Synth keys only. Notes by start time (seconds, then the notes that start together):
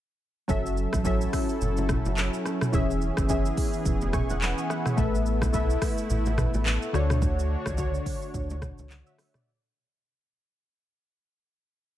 0.48 F#3 C#4 A4 E5
1.04 F#3 C#4 A4 E5
2.72 E3 C#4 G#4 E5
3.28 E3 C#4 G#4 E5
4.14 G#5 C#6
4.30 F#5
4.42 F#5 B5
4.58 G#5
4.70 E5 F#5
4.86 E5
4.96 A3 A4 B4 E5
5.53 A3 A4 B4 E5
6.93 D3 D4 F#4 C#5
7.77 D3 D4 F#4 C#5
8.91 F#5
9.07 E5
9.35 D5